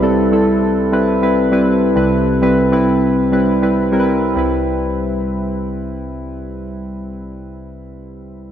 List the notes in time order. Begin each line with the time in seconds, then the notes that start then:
Already playing: C2 C3 G3 C4 E4 B4
0.02 G3 C4 E4 A4
0.32 G3 C4 E4 A4
0.92 G3 C4 E4 B4
1.22 G3 C4 E4 B4
1.52 G3 C4 E4 B4
1.96 C2 C3 G3 C4 E4 B4
2.42 G3 C4 E4 B4
2.72 G3 C4 E4 B4
3.32 G3 C4 E4 B4
3.62 G3 C4 E4 B4
3.92 G3 C4 E4 A#4
4.00 B4
4.34 C2 G3 C4 E4
4.39 B4